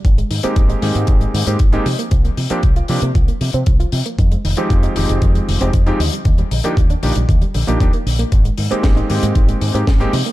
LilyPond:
<<
  \new Staff \with { instrumentName = "Electric grand piano" } { \time 4/4 \key aes \lydian \tempo 4 = 116 r8. <aes bes c' ees' g'>8. <aes bes c' ees' g'>4~ <aes bes c' ees' g'>16 <aes bes c' ees' g'>16 r16 <aes bes c' ees' g'>16 r8 | r8. <f bes c' d' g'>16 r8 <f bes c' d' g'>16 r2 r16 | r8. <f aes c' ees' g'>8. <f aes c' ees' g'>4~ <f aes c' ees' g'>16 <f aes c' ees' g'>16 r16 <f aes c' ees' g'>16 r8 | r8. <f bes d' ees' g'>16 r8 <f bes d' ees' g'>16 r4 <f bes d' ees' g'>16 <f bes d' ees' g'>16 r8. |
r8. <aes bes c' ees' g'>8. <aes bes c' ees' g'>4~ <aes bes c' ees' g'>16 <aes bes c' ees' g'>16 r16 <aes bes c' ees' g'>16 r8 | }
  \new Staff \with { instrumentName = "Synth arpeggio sound" } { \clef bass \time 4/4 \key aes \lydian ees16 aes16 ees16 c'16 ees16 ees'16 ees16 aes16 ees16 aes16 ees16 c'16 ees16 ees'16 f16 bes16 | f16 bes16 f16 c'16 f16 f'16 f16 bes16 f16 bes16 f16 c'16 f16 f'16 f16 bes16 | ees16 aes16 ees16 c'16 ees16 ees'16 ees16 aes16 ees16 aes16 ees16 c'16 ees16 ees'16 d16 g16 | d16 g16 d16 bes16 d16 d'16 d16 g16 d16 g16 d16 bes16 d'16 bes16 d16 bes16 |
ees16 aes16 ees16 c'16 ees16 ees'16 ees16 aes16 ees16 aes16 ees16 c'16 ees16 ees'16 f16 bes16 | }
  \new Staff \with { instrumentName = "Fingered electric bass" } { \clef bass \time 4/4 \key aes \lydian aes,,16 r16 aes,16 r16 aes,,16 r16 aes,16 aes,16 aes,,16 r16 aes,16 aes,16 aes,,16 r16 c16 r16 | c,16 r16 c16 r16 c,16 r16 c16 c16 c,16 r16 c16 c16 c,16 r16 c16 r16 | f,16 r16 f,,16 r16 f,16 r16 f,,16 f,,16 f,16 r16 f,,16 f,,16 f,16 r16 ees,16 r16 | ees,16 r16 bes,,16 r16 ees,16 r16 bes,,16 bes,,16 ees,16 r16 bes,,16 bes,,16 ees,16 r16 bes,,16 r16 |
aes,,16 r16 aes,16 r16 aes,,16 r16 aes,16 aes,16 aes,,16 r16 aes,16 aes,16 aes,,16 r16 c16 r16 | }
  \new DrumStaff \with { instrumentName = "Drums" } \drummode { \time 4/4 <hh bd>16 hh16 hho16 hh16 <hh bd>16 hh16 hho16 hh16 <hh bd>16 hh16 hho16 hh16 <hh bd>16 hh16 hho16 hh16 | <hh bd>16 hh16 hho16 hh16 <hh bd>16 hh16 hho16 hh16 <hh bd>16 hh16 hho16 hh16 <hh bd>16 hh16 hho16 hh16 | <hh bd>16 hh16 hho16 hh16 <hh bd>16 hh16 hho16 hh16 <hh bd>16 hh16 hho16 hh16 <hh bd>16 hh16 hho16 hh16 | <hh bd>16 hh16 hho16 hh16 <hh bd>16 hh16 hho16 hh16 <hh bd>16 hh16 hho16 hh16 <hh bd>16 hh16 hho16 hh16 |
<hh bd>16 hh16 hho16 hh16 <hh bd sn>16 hh16 hho16 hh16 <hh bd>16 hh16 hho16 hh16 <hh bd sn>16 hh16 hho16 hh16 | }
>>